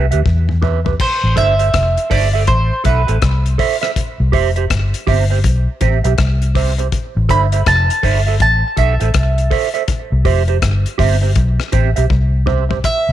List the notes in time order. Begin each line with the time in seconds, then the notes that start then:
Already playing: C2
0.11 D2 G4 B4 E5, closed hi-hat
0.26 E2, kick, high tom
0.49 mid tom
0.62 G4 B4 E5, mid tom
0.85 G4 B4 E5, floor tom
1.00 C5, kick, crash
1.24 A1
1.36 G1 A4 C5 E5, kick, closed hi-hat
1.59 A4 C5 E5, closed hi-hat
1.74 F1, kick, cross-stick, closed hi-hat
1.97 closed hi-hat
2.10 G1 A4 C5 D5 E5, kick, open hi-hat
2.33 A4 C5 E5
2.47 A1 C5, kick, closed hi-hat
2.84 B1 A4 B4 C5 E5, kick, closed hi-hat
3.07 A1 A4 C5 E5, closed hi-hat
3.22 C2, kick, cross-stick, closed hi-hat
3.46 closed hi-hat
3.58 A4 C5 E5, kick, open hi-hat
3.81 A4 C5 E5, cross-stick, closed hi-hat
3.96 kick, closed hi-hat
4.20 C2
4.32 F1 G4 C5 E5, kick, open hi-hat
4.56 G4 C5 E5, closed hi-hat
4.70 G1, kick, cross-stick, closed hi-hat
4.94 closed hi-hat
5.07 G1 G4 C5 E5, kick, open hi-hat
5.30 G4 C5 E5
5.44 B1, kick, closed hi-hat
5.81 A1 G4 C5 E5, kick, closed hi-hat
6.04 B1 G4 C5 E5, closed hi-hat
6.18 C2, kick, cross-stick, closed hi-hat
6.42 closed hi-hat
6.55 G4 C5 E5, kick, open hi-hat
6.78 G4 C5 E5, closed hi-hat
6.92 kick, closed hi-hat
7.17 A1
7.29 G1 A4 C5 E5 B5, kick, closed hi-hat
7.52 A4 C5 E5, closed hi-hat
7.66 F1 A5, kick, cross-stick, closed hi-hat
7.90 closed hi-hat
8.03 G1 A4 C5 E5, kick, open hi-hat
8.27 A4 C5 E5
8.40 A1 A5, kick, closed hi-hat
8.77 B1 A4 C5 E5, kick, closed hi-hat
9.00 A1 A4 C5 E5, closed hi-hat
9.14 C2, kick, cross-stick, closed hi-hat
9.38 closed hi-hat
9.50 A4 C5 E5, kick, open hi-hat
9.74 A4 C5 E5, closed hi-hat
9.88 kick, closed hi-hat
10.12 C2
10.25 F1 G4 C5 E5, kick, open hi-hat
10.48 G4 C5 E5, closed hi-hat
10.62 G1, kick, cross-stick, closed hi-hat
10.86 closed hi-hat
10.98 G1 G4 C5 E5, kick, open hi-hat
11.21 G4 C5 E5
11.35 B1, kick, closed hi-hat
11.60 cross-stick
11.72 A1 G4 C5 E5, kick, closed hi-hat
11.96 B1 G4 C5 E5, closed hi-hat
12.10 C2, kick, high tom
12.46 G4 C5 E5, mid tom
12.69 G4 C5 E5, floor tom
12.84 E5, kick, closed hi-hat
13.09 C2